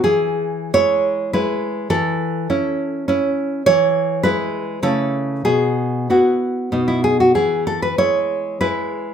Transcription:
\new Staff \with { instrumentName = "Nylon-string guitar" } { \time 3/4 \key e \major \tempo 4 = 99 << { gis'4 cis''4 b'4 | a'2. | cis''4 b'4 a'4 | gis'4 fis'4 r16 e'16 gis'16 fis'16 |
gis'8 a'16 b'16 cis''4 b'4 | } \\ { e4 <gis e'>4 <gis e'>4 | e4 <cis' e'>4 <cis' e'>4 | e4 <gis e'>4 <cis a e'>4 | b,4 <b e'>4 <b, b dis'>4 |
e4 <gis e'>4 <gis e'>4 | } >> }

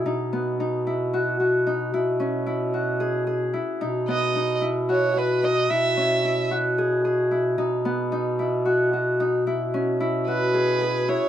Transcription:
<<
  \new Staff \with { instrumentName = "Violin" } { \time 7/8 \key b \major \tempo 4 = 112 r2. r8 | r2. r8 | r8 dis''4 r8 cis''8 b'8 dis''8 | e''4. r2 |
r2. r8 | r4. b'4. cis''8 | }
  \new Staff \with { instrumentName = "Harp" } { \time 7/8 \key b \major dis'8 b8 dis'8 e'8 fis'8 fis'8 dis'8 | e'8 cis'8 e'8 fis'8 gis'8 gis'8 e'8 | dis'8 b8 dis'8 e'8 fis'8 fis'8 dis'8 | e'8 cis'8 e'8 fis'8 gis'8 gis'8 e'8 |
dis'8 b8 dis'8 e'8 fis'8 fis'8 dis'8 | e'8 cis'8 e'8 fis'8 gis'8 gis'8 e'8 | }
  \new Staff \with { instrumentName = "Bass clarinet" } { \clef bass \time 7/8 \key b \major b,2.~ b,8 | b,2.~ b,8 | b,2.~ b,8 | b,2.~ b,8 |
b,2.~ b,8 | b,2.~ b,8 | }
>>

